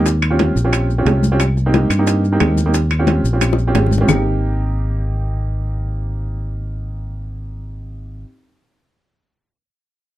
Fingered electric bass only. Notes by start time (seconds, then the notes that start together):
Already playing: D#2
0.56 A#1
1.05 C2
1.90 G2
2.41 D#2
3.24 A#1
3.74 G#1
4.08 G#1